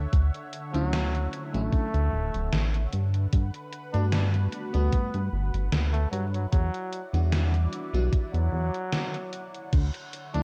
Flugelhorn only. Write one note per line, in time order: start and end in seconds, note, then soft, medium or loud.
0.74 1.32 F#3 loud
1.53 2.65 A3 loud
3.93 4.05 D4 medium
4.12 4.26 D4 medium
4.73 5.21 B3 medium
5.93 6.08 A3 medium
6.11 6.26 F#3 medium
6.33 6.46 F#3 medium
6.51 7.01 F#3 loud
8.33 9.45 F#3 loud
10.34 10.43 D4 medium